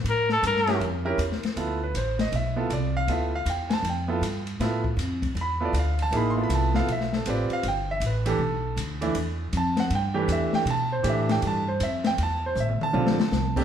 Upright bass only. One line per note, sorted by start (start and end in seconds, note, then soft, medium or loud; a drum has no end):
0.04 0.41 A2 medium
0.43 0.80 G2 loud
0.80 1.17 F2 loud
1.18 1.41 E2 loud
1.43 muted upright bass stroke soft
1.56 1.93 D2 medium
1.94 2.31 A1 medium
2.32 2.69 B1 medium
2.70 3.07 C2 loud
3.07 3.45 D2 medium
3.45 3.82 E2 loud
3.83 4.20 F2 loud
4.21 4.58 G2 medium
4.60 4.96 A2 medium
4.97 5.34 F2 loud
5.35 5.72 E2 loud
5.73 6.10 D2 medium
6.11 6.48 A1 medium
6.49 6.86 C2 loud
6.87 7.24 B1 medium
7.26 7.48 A1 medium
7.49 muted upright bass stroke soft
7.63 8.00 G1 medium
8.00 8.38 A1 loud
8.38 8.76 B1 medium
8.76 9.14 D2 medium
9.15 9.52 E2 medium
9.53 9.90 F2 loud
9.90 10.27 G2 medium
10.28 10.51 E2 loud
10.52 muted upright bass stroke soft
10.65 11.03 B2 medium
11.04 11.41 A2 medium
11.42 11.79 G2 loud
11.80 12.17 F2 medium
12.18 12.55 E2 medium
12.55 12.78 A1 loud
12.80 muted upright bass stroke soft
12.94 13.17 B1 loud
13.18 muted upright bass stroke soft
13.31 13.64 C2 medium